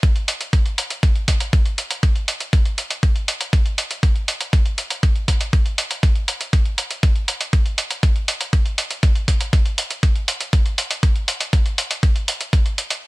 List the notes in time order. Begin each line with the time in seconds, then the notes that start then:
0.03 kick, closed hi-hat
0.16 closed hi-hat
0.28 closed hi-hat
0.41 closed hi-hat
0.53 kick, closed hi-hat
0.66 closed hi-hat
0.78 closed hi-hat
0.90 closed hi-hat
1.03 kick, closed hi-hat
1.16 closed hi-hat
1.28 kick, closed hi-hat
1.40 closed hi-hat
1.53 kick, closed hi-hat
1.66 closed hi-hat
1.78 closed hi-hat
1.91 closed hi-hat
2.03 kick, closed hi-hat
2.16 closed hi-hat
2.28 closed hi-hat
2.40 closed hi-hat
2.53 kick, closed hi-hat
2.66 closed hi-hat
2.78 closed hi-hat
2.91 closed hi-hat
3.03 kick, closed hi-hat
3.16 closed hi-hat
3.28 closed hi-hat
3.41 closed hi-hat
3.53 kick, closed hi-hat
3.66 closed hi-hat
3.78 closed hi-hat
3.91 closed hi-hat
4.03 kick, closed hi-hat
4.16 closed hi-hat
4.28 closed hi-hat
4.41 closed hi-hat
4.53 kick, closed hi-hat
4.66 closed hi-hat
4.78 closed hi-hat
4.90 closed hi-hat
5.03 kick, closed hi-hat
5.16 closed hi-hat
5.28 kick, closed hi-hat
5.41 closed hi-hat
5.53 kick, closed hi-hat
5.66 closed hi-hat
5.78 closed hi-hat
5.91 closed hi-hat
6.03 kick, closed hi-hat
6.16 closed hi-hat
6.28 closed hi-hat
6.41 closed hi-hat
6.53 kick, closed hi-hat
6.66 closed hi-hat
6.78 closed hi-hat
6.91 closed hi-hat
7.03 kick, closed hi-hat
7.16 closed hi-hat
7.28 closed hi-hat
7.41 closed hi-hat
7.53 kick, closed hi-hat
7.66 closed hi-hat
7.78 closed hi-hat
7.91 closed hi-hat
8.03 kick, closed hi-hat
8.16 closed hi-hat
8.28 closed hi-hat
8.41 closed hi-hat
8.53 kick, closed hi-hat
8.66 closed hi-hat
8.78 closed hi-hat
8.91 closed hi-hat
9.03 kick, closed hi-hat
9.16 closed hi-hat
9.28 kick, closed hi-hat
9.41 closed hi-hat
9.53 kick, closed hi-hat
9.66 closed hi-hat
9.78 closed hi-hat
9.91 closed hi-hat
10.03 kick, closed hi-hat
10.16 closed hi-hat
10.28 closed hi-hat
10.41 closed hi-hat
10.53 kick, closed hi-hat
10.66 closed hi-hat
10.78 closed hi-hat
10.91 closed hi-hat
11.03 kick, closed hi-hat
11.16 closed hi-hat
11.28 closed hi-hat
11.40 closed hi-hat
11.53 kick, closed hi-hat
11.66 closed hi-hat
11.78 closed hi-hat
11.91 closed hi-hat
12.03 kick, closed hi-hat
12.16 closed hi-hat
12.28 closed hi-hat
12.41 closed hi-hat
12.53 kick, closed hi-hat
12.66 closed hi-hat
12.78 closed hi-hat
12.90 closed hi-hat